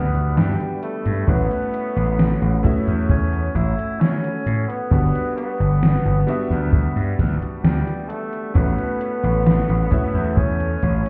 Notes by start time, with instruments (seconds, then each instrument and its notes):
Already playing: slap bass D2, electric grand piano G3 B3 D4 F#4 E5, ambient pad G3 D5 E5 B5, tenor saxophone B3
0.15 closed hi-hat
0.37 slap bass G2, tenor saxophone G3, snare, closed hi-hat
0.60 closed hi-hat
0.83 tenor saxophone A3, closed hi-hat
1.06 slap bass G2, closed hi-hat
1.27 slap bass A1, electric grand piano A3 C#4 E4 F#4 B4, tenor saxophone B3, ambient pad A4 C#5 F#5, kick, closed hi-hat
1.51 closed hi-hat
1.74 closed hi-hat
1.96 slap bass A1, closed hi-hat
2.19 snare, closed hi-hat
2.42 slap bass A1, closed hi-hat
2.63 electric grand piano A3 C#4 E4 F#4 E5, kick, closed hi-hat
2.87 slap bass E2, closed hi-hat
3.10 tenor saxophone C#4, kick, closed hi-hat
3.33 closed hi-hat
3.55 slap bass A1, tenor saxophone E4, kick, closed hi-hat
3.79 closed hi-hat
4.00 tenor saxophone C#4, snare, closed hi-hat
4.24 closed hi-hat
4.46 slap bass A2, closed hi-hat
4.68 tenor saxophone B3, closed hi-hat
4.90 slap bass G1, electric grand piano G3 B3 D4 F#4 B4, ambient pad G3 D5, kick, closed hi-hat
5.15 closed hi-hat
5.37 tenor saxophone B3, closed hi-hat
5.60 slap bass G1, closed hi-hat
5.83 snare, closed hi-hat
6.05 slap bass G1, closed hi-hat
6.27 electric grand piano G3 B3 D4 F#4 E5, closed hi-hat
6.50 slap bass D2, closed hi-hat
6.73 kick, closed hi-hat
6.96 slap bass G2, closed hi-hat
7.19 slap bass D2, kick, snare, closed hi-hat
7.42 muted slap bass stroke, closed hi-hat
7.64 slap bass D2, tenor saxophone G3, snare, closed hi-hat
7.88 closed hi-hat
8.09 tenor saxophone A3, closed hi-hat
8.33 closed hi-hat
8.54 slap bass A1, electric grand piano A3 C#4 E4 F#4 B4, tenor saxophone B3, ambient pad A4 C#5, kick, closed hi-hat
8.78 closed hi-hat
9.01 closed hi-hat
9.23 slap bass A1, closed hi-hat
9.46 snare, closed hi-hat
9.69 slap bass A1, closed hi-hat
9.90 electric grand piano A3 C#4 E4 F#4 E5, kick, closed hi-hat
10.14 slap bass E2, closed hi-hat
10.37 tenor saxophone C#4, ambient pad E5, kick, closed hi-hat
10.60 closed hi-hat
10.83 slap bass A1, kick, closed hi-hat
11.06 closed hi-hat